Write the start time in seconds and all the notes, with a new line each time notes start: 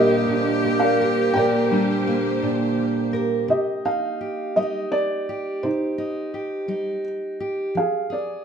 Already playing: A#2 D3 G3 A#3 D4 G4 A#4 C5 D#5
0.28 A#2 D4
0.64 A#3 A#4
0.80 A#4 D5 F5
0.99 G4 A#4
1.34 A#2 A#3 A#4 C5 D5 G5
1.71 G3 D4
2.06 A#3
2.42 A#2 D4
2.78 A#3
3.13 G4 A#4
3.48 C3 G4 D#5
3.85 D#4 F5
4.21 G4
4.56 G3 D#4 D#5
4.92 D5
5.29 G4
5.63 C3 D#4 C5
5.98 D#4
6.34 G4
6.68 G3 D#4
7.40 G4
7.75 F3 G#4 F5
8.10 G#4 D5